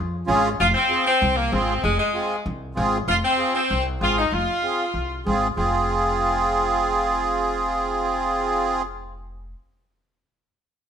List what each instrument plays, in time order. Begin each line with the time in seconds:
Already playing: upright bass F2
0.27 upright bass G#1, accordion C#4 F4 G#4
0.60 upright bass F1, saxophone section F4
0.74 saxophone section C4
0.89 accordion C4 F4 G#4
1.06 saxophone section C4
1.22 upright bass C2
1.35 saxophone section A#3
1.51 upright bass G#1, saxophone section C4, accordion C4 F4 G#4
1.82 upright bass F1, saxophone section G#3
1.98 saxophone section G#3
2.14 accordion C4 F4 G#4
2.46 upright bass C2
2.75 upright bass G#1, accordion C4 F4 G#4
3.08 upright bass F1, saxophone section F4
3.23 saxophone section C4
3.37 accordion C4 F4 G#4
3.54 saxophone section C4
3.70 upright bass C2
4.00 upright bass G#1, accordion C4 F4 G#4, saxophone section F4
4.17 saxophone section D#4
4.32 upright bass F1, saxophone section F4
4.62 accordion C4 F4 G#4
4.94 upright bass C2
5.26 upright bass G#1, accordion C4 F4 G#4
5.57 upright bass F1, accordion C4 F4 G#4